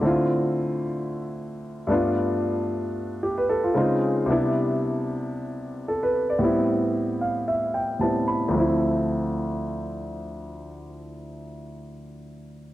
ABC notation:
X:1
M:4/4
L:1/16
Q:"Swing 16ths" 1/4=113
K:Ddor
V:1 name="Grand piano"
z16 | z8 G B A F2 z3 | z12 A B2 d- | d z4 z f2 e2 g2 a2 b2 |
z16 | z16 |]
V:2 name="Grand piano"
[D,A,CEF]12- [D,A,CEF]2 [G,,A,B,DF]2- | [G,,A,B,DF]12 [^C,^G,^B,^D^E]4 | [C,G,B,DE]12- [C,G,B,DE]2 z2 | [A,,G,B,CE]12 [A,,G,B,CE]4 |
[D,,F,A,CE]16- | [D,,F,A,CE]16 |]